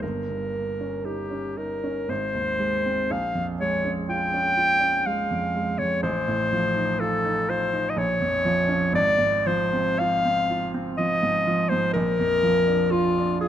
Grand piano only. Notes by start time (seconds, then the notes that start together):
0.03 G1
0.29 G2
0.53 A#3
0.81 C#4
1.05 D#4
1.31 C#4
1.57 D#4
1.84 C#4
2.09 G#1
2.34 D#2
2.59 G#3
2.86 C4
3.10 A#1
3.35 F2
3.60 G#3
3.84 C#4
4.09 F4
4.34 C#4
4.57 F4
4.81 C#4
5.06 G#3
5.31 F2
5.55 G#3
5.79 F2
6.03 A1
6.28 A2
6.53 F3
6.76 D#4
7.00 F4
7.24 D#4
7.48 F4
7.73 D#4
7.97 A#1
8.21 F2
8.45 F3
8.69 C#4
8.93 G#1
9.18 G#2
9.47 F3
9.73 C4
10.00 F4
10.25 C4
10.50 F4
10.74 C4
10.99 F3
11.23 G#2
11.47 F3
11.72 G#2
11.95 A#1
12.19 F2
12.43 F3
12.67 D4
12.92 F4
13.18 D4
13.42 F4